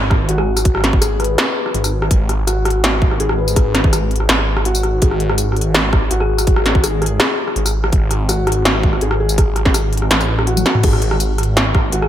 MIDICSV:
0, 0, Header, 1, 6, 480
1, 0, Start_track
1, 0, Tempo, 363636
1, 863, Time_signature, 4, 2, 24, 8
1, 15950, End_track
2, 0, Start_track
2, 0, Title_t, "Felt piano"
2, 0, Program_c, 0, 0
2, 0, Control_c, 0, 64, 127
2, 380, Note_on_c, 0, 66, 98
2, 525, Note_off_c, 0, 66, 0
2, 1338, Note_on_c, 0, 68, 102
2, 1569, Note_off_c, 0, 68, 0
2, 1582, Note_on_c, 0, 71, 80
2, 1812, Note_off_c, 0, 71, 0
2, 1819, Note_on_c, 0, 68, 84
2, 1964, Note_off_c, 0, 68, 0
2, 3261, Note_on_c, 0, 66, 101
2, 3405, Note_off_c, 0, 66, 0
2, 4226, Note_on_c, 0, 68, 102
2, 4454, Note_off_c, 0, 68, 0
2, 4464, Note_on_c, 0, 71, 77
2, 4693, Note_off_c, 0, 71, 0
2, 4706, Note_on_c, 0, 68, 83
2, 4848, Note_off_c, 0, 68, 0
2, 6149, Note_on_c, 0, 66, 103
2, 6289, Note_off_c, 0, 66, 0
2, 6629, Note_on_c, 0, 68, 85
2, 6769, Note_off_c, 0, 68, 0
2, 8062, Note_on_c, 0, 66, 103
2, 8206, Note_off_c, 0, 66, 0
2, 9023, Note_on_c, 0, 68, 104
2, 9241, Note_off_c, 0, 68, 0
2, 9260, Note_on_c, 0, 68, 109
2, 9479, Note_off_c, 0, 68, 0
2, 9503, Note_on_c, 0, 68, 89
2, 9646, Note_off_c, 0, 68, 0
2, 10943, Note_on_c, 0, 66, 100
2, 11086, Note_off_c, 0, 66, 0
2, 11908, Note_on_c, 0, 68, 100
2, 12124, Note_off_c, 0, 68, 0
2, 12144, Note_on_c, 0, 68, 97
2, 12361, Note_off_c, 0, 68, 0
2, 12387, Note_on_c, 0, 68, 86
2, 12528, Note_off_c, 0, 68, 0
2, 13826, Note_on_c, 0, 66, 100
2, 13967, Note_off_c, 0, 66, 0
2, 14306, Note_on_c, 0, 68, 84
2, 14448, Note_off_c, 0, 68, 0
2, 15745, Note_on_c, 0, 66, 96
2, 15887, Note_off_c, 0, 66, 0
2, 15950, End_track
3, 0, Start_track
3, 0, Title_t, "Synth pluck"
3, 0, Program_c, 1, 84
3, 503, Note_on_c, 1, 68, 93
3, 1176, Note_off_c, 1, 68, 0
3, 8195, Note_on_c, 1, 68, 94
3, 8862, Note_off_c, 1, 68, 0
3, 15872, Note_on_c, 1, 68, 92
3, 15950, Note_off_c, 1, 68, 0
3, 15950, End_track
4, 0, Start_track
4, 0, Title_t, "Detuned saw bass"
4, 0, Program_c, 2, 39
4, 0, Note_on_c, 2, 32, 97
4, 366, Note_off_c, 2, 32, 0
4, 375, Note_on_c, 2, 32, 95
4, 1801, Note_off_c, 2, 32, 0
4, 2302, Note_on_c, 2, 32, 97
4, 2765, Note_off_c, 2, 32, 0
4, 2782, Note_on_c, 2, 32, 102
4, 4205, Note_off_c, 2, 32, 0
4, 4226, Note_on_c, 2, 32, 92
4, 5647, Note_off_c, 2, 32, 0
4, 5667, Note_on_c, 2, 32, 95
4, 6607, Note_off_c, 2, 32, 0
4, 6627, Note_on_c, 2, 32, 99
4, 8047, Note_off_c, 2, 32, 0
4, 8068, Note_on_c, 2, 32, 92
4, 9488, Note_off_c, 2, 32, 0
4, 9979, Note_on_c, 2, 32, 91
4, 10443, Note_off_c, 2, 32, 0
4, 10462, Note_on_c, 2, 32, 99
4, 11885, Note_off_c, 2, 32, 0
4, 11900, Note_on_c, 2, 32, 94
4, 13324, Note_off_c, 2, 32, 0
4, 13341, Note_on_c, 2, 33, 93
4, 14044, Note_off_c, 2, 33, 0
4, 14305, Note_on_c, 2, 32, 100
4, 15726, Note_off_c, 2, 32, 0
4, 15744, Note_on_c, 2, 32, 95
4, 15950, Note_off_c, 2, 32, 0
4, 15950, End_track
5, 0, Start_track
5, 0, Title_t, "Sub drop"
5, 0, Program_c, 3, 103
5, 0, Note_on_c, 3, 60, 74
5, 865, Note_off_c, 3, 60, 0
5, 15950, End_track
6, 0, Start_track
6, 0, Title_t, "Drums"
6, 138, Note_on_c, 9, 37, 79
6, 143, Note_on_c, 9, 36, 105
6, 270, Note_off_c, 9, 37, 0
6, 275, Note_off_c, 9, 36, 0
6, 379, Note_on_c, 9, 42, 80
6, 506, Note_on_c, 9, 37, 54
6, 511, Note_off_c, 9, 42, 0
6, 638, Note_off_c, 9, 37, 0
6, 747, Note_on_c, 9, 37, 54
6, 747, Note_on_c, 9, 54, 67
6, 860, Note_on_c, 9, 42, 84
6, 861, Note_on_c, 9, 36, 120
6, 879, Note_off_c, 9, 37, 0
6, 879, Note_off_c, 9, 54, 0
6, 987, Note_on_c, 9, 37, 75
6, 992, Note_off_c, 9, 42, 0
6, 993, Note_off_c, 9, 36, 0
6, 1022, Note_off_c, 9, 37, 0
6, 1022, Note_on_c, 9, 37, 60
6, 1064, Note_off_c, 9, 37, 0
6, 1064, Note_on_c, 9, 37, 53
6, 1105, Note_on_c, 9, 38, 63
6, 1105, Note_on_c, 9, 42, 70
6, 1196, Note_off_c, 9, 37, 0
6, 1229, Note_on_c, 9, 36, 105
6, 1237, Note_off_c, 9, 38, 0
6, 1237, Note_off_c, 9, 42, 0
6, 1342, Note_on_c, 9, 37, 55
6, 1342, Note_on_c, 9, 42, 84
6, 1342, Note_on_c, 9, 54, 66
6, 1361, Note_off_c, 9, 36, 0
6, 1474, Note_off_c, 9, 37, 0
6, 1474, Note_off_c, 9, 42, 0
6, 1474, Note_off_c, 9, 54, 0
6, 1581, Note_on_c, 9, 37, 53
6, 1581, Note_on_c, 9, 42, 53
6, 1643, Note_off_c, 9, 42, 0
6, 1643, Note_on_c, 9, 42, 68
6, 1713, Note_off_c, 9, 37, 0
6, 1775, Note_off_c, 9, 42, 0
6, 1824, Note_on_c, 9, 37, 83
6, 1824, Note_on_c, 9, 38, 124
6, 1824, Note_on_c, 9, 42, 86
6, 1956, Note_off_c, 9, 37, 0
6, 1956, Note_off_c, 9, 38, 0
6, 1956, Note_off_c, 9, 42, 0
6, 2192, Note_on_c, 9, 37, 53
6, 2303, Note_on_c, 9, 42, 83
6, 2324, Note_off_c, 9, 37, 0
6, 2430, Note_on_c, 9, 37, 51
6, 2430, Note_on_c, 9, 54, 64
6, 2435, Note_off_c, 9, 42, 0
6, 2562, Note_off_c, 9, 37, 0
6, 2562, Note_off_c, 9, 54, 0
6, 2669, Note_on_c, 9, 37, 80
6, 2782, Note_on_c, 9, 36, 124
6, 2783, Note_on_c, 9, 42, 83
6, 2801, Note_off_c, 9, 37, 0
6, 2914, Note_off_c, 9, 36, 0
6, 2915, Note_off_c, 9, 42, 0
6, 3026, Note_on_c, 9, 37, 54
6, 3026, Note_on_c, 9, 42, 68
6, 3158, Note_off_c, 9, 37, 0
6, 3158, Note_off_c, 9, 42, 0
6, 3266, Note_on_c, 9, 37, 52
6, 3266, Note_on_c, 9, 42, 81
6, 3266, Note_on_c, 9, 54, 63
6, 3398, Note_off_c, 9, 37, 0
6, 3398, Note_off_c, 9, 42, 0
6, 3398, Note_off_c, 9, 54, 0
6, 3503, Note_on_c, 9, 37, 81
6, 3503, Note_on_c, 9, 42, 51
6, 3570, Note_off_c, 9, 42, 0
6, 3570, Note_on_c, 9, 42, 65
6, 3635, Note_off_c, 9, 37, 0
6, 3702, Note_off_c, 9, 42, 0
6, 3747, Note_on_c, 9, 38, 121
6, 3747, Note_on_c, 9, 42, 81
6, 3873, Note_on_c, 9, 37, 51
6, 3879, Note_off_c, 9, 38, 0
6, 3879, Note_off_c, 9, 42, 0
6, 3983, Note_on_c, 9, 36, 110
6, 4005, Note_off_c, 9, 37, 0
6, 4110, Note_on_c, 9, 37, 50
6, 4116, Note_off_c, 9, 36, 0
6, 4224, Note_on_c, 9, 42, 81
6, 4242, Note_off_c, 9, 37, 0
6, 4348, Note_on_c, 9, 37, 77
6, 4356, Note_off_c, 9, 42, 0
6, 4480, Note_off_c, 9, 37, 0
6, 4589, Note_on_c, 9, 54, 60
6, 4704, Note_on_c, 9, 36, 125
6, 4704, Note_on_c, 9, 37, 51
6, 4704, Note_on_c, 9, 42, 80
6, 4721, Note_off_c, 9, 54, 0
6, 4836, Note_off_c, 9, 36, 0
6, 4836, Note_off_c, 9, 37, 0
6, 4836, Note_off_c, 9, 42, 0
6, 4944, Note_on_c, 9, 37, 53
6, 4944, Note_on_c, 9, 38, 64
6, 4944, Note_on_c, 9, 42, 67
6, 5071, Note_on_c, 9, 36, 111
6, 5076, Note_off_c, 9, 37, 0
6, 5076, Note_off_c, 9, 38, 0
6, 5076, Note_off_c, 9, 42, 0
6, 5185, Note_on_c, 9, 37, 76
6, 5185, Note_on_c, 9, 42, 80
6, 5185, Note_on_c, 9, 54, 62
6, 5203, Note_off_c, 9, 36, 0
6, 5317, Note_off_c, 9, 37, 0
6, 5317, Note_off_c, 9, 42, 0
6, 5317, Note_off_c, 9, 54, 0
6, 5425, Note_on_c, 9, 42, 49
6, 5487, Note_off_c, 9, 42, 0
6, 5487, Note_on_c, 9, 42, 62
6, 5548, Note_on_c, 9, 37, 50
6, 5619, Note_off_c, 9, 42, 0
6, 5663, Note_on_c, 9, 38, 125
6, 5663, Note_on_c, 9, 42, 79
6, 5680, Note_off_c, 9, 37, 0
6, 5792, Note_on_c, 9, 37, 48
6, 5795, Note_off_c, 9, 38, 0
6, 5795, Note_off_c, 9, 42, 0
6, 5924, Note_off_c, 9, 37, 0
6, 6028, Note_on_c, 9, 37, 77
6, 6143, Note_on_c, 9, 42, 76
6, 6160, Note_off_c, 9, 37, 0
6, 6266, Note_on_c, 9, 54, 62
6, 6275, Note_off_c, 9, 42, 0
6, 6381, Note_on_c, 9, 37, 51
6, 6381, Note_on_c, 9, 42, 35
6, 6398, Note_off_c, 9, 54, 0
6, 6513, Note_off_c, 9, 37, 0
6, 6513, Note_off_c, 9, 42, 0
6, 6623, Note_on_c, 9, 42, 77
6, 6627, Note_on_c, 9, 36, 119
6, 6750, Note_on_c, 9, 37, 51
6, 6755, Note_off_c, 9, 42, 0
6, 6759, Note_off_c, 9, 36, 0
6, 6865, Note_on_c, 9, 42, 64
6, 6882, Note_off_c, 9, 37, 0
6, 6990, Note_on_c, 9, 37, 76
6, 6997, Note_off_c, 9, 42, 0
6, 7100, Note_on_c, 9, 42, 74
6, 7100, Note_on_c, 9, 54, 65
6, 7122, Note_off_c, 9, 37, 0
6, 7232, Note_off_c, 9, 42, 0
6, 7232, Note_off_c, 9, 54, 0
6, 7288, Note_on_c, 9, 37, 50
6, 7346, Note_on_c, 9, 42, 47
6, 7411, Note_off_c, 9, 42, 0
6, 7411, Note_on_c, 9, 42, 62
6, 7420, Note_off_c, 9, 37, 0
6, 7543, Note_off_c, 9, 42, 0
6, 7584, Note_on_c, 9, 37, 50
6, 7584, Note_on_c, 9, 38, 124
6, 7584, Note_on_c, 9, 42, 75
6, 7716, Note_off_c, 9, 37, 0
6, 7716, Note_off_c, 9, 38, 0
6, 7716, Note_off_c, 9, 42, 0
6, 7825, Note_on_c, 9, 36, 104
6, 7826, Note_on_c, 9, 37, 76
6, 7957, Note_off_c, 9, 36, 0
6, 7958, Note_off_c, 9, 37, 0
6, 8062, Note_on_c, 9, 42, 78
6, 8189, Note_on_c, 9, 37, 50
6, 8194, Note_off_c, 9, 42, 0
6, 8321, Note_off_c, 9, 37, 0
6, 8427, Note_on_c, 9, 37, 50
6, 8427, Note_on_c, 9, 54, 66
6, 8540, Note_on_c, 9, 42, 78
6, 8544, Note_on_c, 9, 36, 115
6, 8559, Note_off_c, 9, 37, 0
6, 8559, Note_off_c, 9, 54, 0
6, 8665, Note_on_c, 9, 37, 80
6, 8672, Note_off_c, 9, 42, 0
6, 8676, Note_off_c, 9, 36, 0
6, 8787, Note_on_c, 9, 38, 61
6, 8787, Note_on_c, 9, 42, 62
6, 8797, Note_off_c, 9, 37, 0
6, 8910, Note_on_c, 9, 36, 104
6, 8919, Note_off_c, 9, 38, 0
6, 8919, Note_off_c, 9, 42, 0
6, 9024, Note_on_c, 9, 37, 52
6, 9024, Note_on_c, 9, 42, 76
6, 9024, Note_on_c, 9, 54, 67
6, 9042, Note_off_c, 9, 36, 0
6, 9156, Note_off_c, 9, 37, 0
6, 9156, Note_off_c, 9, 42, 0
6, 9156, Note_off_c, 9, 54, 0
6, 9264, Note_on_c, 9, 37, 54
6, 9264, Note_on_c, 9, 42, 48
6, 9323, Note_off_c, 9, 42, 0
6, 9323, Note_on_c, 9, 42, 61
6, 9396, Note_off_c, 9, 37, 0
6, 9455, Note_off_c, 9, 42, 0
6, 9500, Note_on_c, 9, 37, 80
6, 9500, Note_on_c, 9, 38, 117
6, 9500, Note_on_c, 9, 42, 77
6, 9632, Note_off_c, 9, 37, 0
6, 9632, Note_off_c, 9, 38, 0
6, 9632, Note_off_c, 9, 42, 0
6, 9869, Note_on_c, 9, 37, 52
6, 9981, Note_on_c, 9, 42, 77
6, 10001, Note_off_c, 9, 37, 0
6, 10107, Note_on_c, 9, 37, 52
6, 10107, Note_on_c, 9, 54, 71
6, 10113, Note_off_c, 9, 42, 0
6, 10239, Note_off_c, 9, 37, 0
6, 10239, Note_off_c, 9, 54, 0
6, 10346, Note_on_c, 9, 37, 79
6, 10461, Note_on_c, 9, 42, 80
6, 10463, Note_on_c, 9, 36, 109
6, 10478, Note_off_c, 9, 37, 0
6, 10593, Note_off_c, 9, 42, 0
6, 10595, Note_off_c, 9, 36, 0
6, 10701, Note_on_c, 9, 37, 54
6, 10701, Note_on_c, 9, 42, 67
6, 10833, Note_off_c, 9, 37, 0
6, 10833, Note_off_c, 9, 42, 0
6, 10941, Note_on_c, 9, 37, 56
6, 10941, Note_on_c, 9, 42, 75
6, 10941, Note_on_c, 9, 54, 68
6, 11073, Note_off_c, 9, 37, 0
6, 11073, Note_off_c, 9, 42, 0
6, 11073, Note_off_c, 9, 54, 0
6, 11180, Note_on_c, 9, 37, 83
6, 11180, Note_on_c, 9, 42, 48
6, 11246, Note_off_c, 9, 42, 0
6, 11246, Note_on_c, 9, 42, 65
6, 11312, Note_off_c, 9, 37, 0
6, 11378, Note_off_c, 9, 42, 0
6, 11423, Note_on_c, 9, 38, 117
6, 11423, Note_on_c, 9, 42, 81
6, 11549, Note_on_c, 9, 37, 53
6, 11555, Note_off_c, 9, 38, 0
6, 11555, Note_off_c, 9, 42, 0
6, 11662, Note_on_c, 9, 36, 101
6, 11681, Note_off_c, 9, 37, 0
6, 11787, Note_on_c, 9, 37, 53
6, 11794, Note_off_c, 9, 36, 0
6, 11898, Note_on_c, 9, 42, 78
6, 11919, Note_off_c, 9, 37, 0
6, 12024, Note_on_c, 9, 37, 83
6, 12030, Note_off_c, 9, 42, 0
6, 12156, Note_off_c, 9, 37, 0
6, 12263, Note_on_c, 9, 54, 69
6, 12381, Note_on_c, 9, 37, 57
6, 12381, Note_on_c, 9, 42, 84
6, 12382, Note_on_c, 9, 36, 117
6, 12395, Note_off_c, 9, 54, 0
6, 12513, Note_off_c, 9, 37, 0
6, 12513, Note_off_c, 9, 42, 0
6, 12514, Note_off_c, 9, 36, 0
6, 12619, Note_on_c, 9, 37, 55
6, 12619, Note_on_c, 9, 42, 68
6, 12744, Note_on_c, 9, 38, 60
6, 12749, Note_on_c, 9, 36, 101
6, 12751, Note_off_c, 9, 37, 0
6, 12751, Note_off_c, 9, 42, 0
6, 12861, Note_on_c, 9, 37, 84
6, 12861, Note_on_c, 9, 42, 79
6, 12861, Note_on_c, 9, 54, 69
6, 12876, Note_off_c, 9, 38, 0
6, 12881, Note_off_c, 9, 36, 0
6, 12993, Note_off_c, 9, 37, 0
6, 12993, Note_off_c, 9, 42, 0
6, 12993, Note_off_c, 9, 54, 0
6, 13103, Note_on_c, 9, 42, 50
6, 13167, Note_off_c, 9, 42, 0
6, 13167, Note_on_c, 9, 42, 69
6, 13229, Note_on_c, 9, 37, 57
6, 13299, Note_off_c, 9, 42, 0
6, 13342, Note_on_c, 9, 38, 116
6, 13342, Note_on_c, 9, 42, 78
6, 13361, Note_off_c, 9, 37, 0
6, 13472, Note_on_c, 9, 37, 53
6, 13472, Note_on_c, 9, 54, 37
6, 13474, Note_off_c, 9, 38, 0
6, 13474, Note_off_c, 9, 42, 0
6, 13604, Note_off_c, 9, 37, 0
6, 13604, Note_off_c, 9, 54, 0
6, 13711, Note_on_c, 9, 37, 81
6, 13822, Note_on_c, 9, 42, 78
6, 13843, Note_off_c, 9, 37, 0
6, 13952, Note_on_c, 9, 48, 50
6, 13952, Note_on_c, 9, 54, 68
6, 13954, Note_off_c, 9, 42, 0
6, 14068, Note_on_c, 9, 37, 55
6, 14068, Note_on_c, 9, 38, 79
6, 14068, Note_on_c, 9, 42, 37
6, 14084, Note_off_c, 9, 48, 0
6, 14084, Note_off_c, 9, 54, 0
6, 14189, Note_on_c, 9, 45, 79
6, 14200, Note_off_c, 9, 37, 0
6, 14200, Note_off_c, 9, 38, 0
6, 14200, Note_off_c, 9, 42, 0
6, 14301, Note_on_c, 9, 42, 87
6, 14301, Note_on_c, 9, 49, 79
6, 14304, Note_on_c, 9, 36, 115
6, 14321, Note_off_c, 9, 45, 0
6, 14431, Note_on_c, 9, 37, 56
6, 14433, Note_off_c, 9, 42, 0
6, 14433, Note_off_c, 9, 49, 0
6, 14436, Note_off_c, 9, 36, 0
6, 14544, Note_on_c, 9, 42, 72
6, 14563, Note_off_c, 9, 37, 0
6, 14668, Note_on_c, 9, 37, 83
6, 14676, Note_off_c, 9, 42, 0
6, 14785, Note_on_c, 9, 42, 85
6, 14785, Note_on_c, 9, 54, 66
6, 14800, Note_off_c, 9, 37, 0
6, 14917, Note_off_c, 9, 42, 0
6, 14917, Note_off_c, 9, 54, 0
6, 15026, Note_on_c, 9, 37, 57
6, 15026, Note_on_c, 9, 42, 53
6, 15090, Note_off_c, 9, 42, 0
6, 15090, Note_on_c, 9, 42, 70
6, 15158, Note_off_c, 9, 37, 0
6, 15222, Note_off_c, 9, 42, 0
6, 15269, Note_on_c, 9, 37, 53
6, 15269, Note_on_c, 9, 38, 118
6, 15269, Note_on_c, 9, 42, 80
6, 15401, Note_off_c, 9, 37, 0
6, 15401, Note_off_c, 9, 38, 0
6, 15401, Note_off_c, 9, 42, 0
6, 15505, Note_on_c, 9, 36, 107
6, 15506, Note_on_c, 9, 37, 83
6, 15637, Note_off_c, 9, 36, 0
6, 15638, Note_off_c, 9, 37, 0
6, 15741, Note_on_c, 9, 42, 83
6, 15872, Note_on_c, 9, 37, 56
6, 15873, Note_off_c, 9, 42, 0
6, 15950, Note_off_c, 9, 37, 0
6, 15950, End_track
0, 0, End_of_file